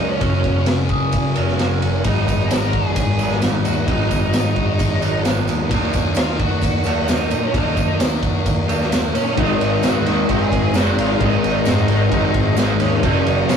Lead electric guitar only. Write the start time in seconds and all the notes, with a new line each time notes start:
0.09 C#4
0.21 C#4
2.05 D#4
2.48 A#4
2.94 G#4
3.66 F#4
3.87 D#4
4.33 D#4
6.17 F4
6.40 F#4
7.10 D#4
7.44 C#4
7.55 D#4
9.15 C#4
9.37 D#4
9.85 F#4
10.30 G#4
10.77 F#4
10.98 F4
11.23 D#4
12.81 C#4
13.03 D#4
13.48 F#4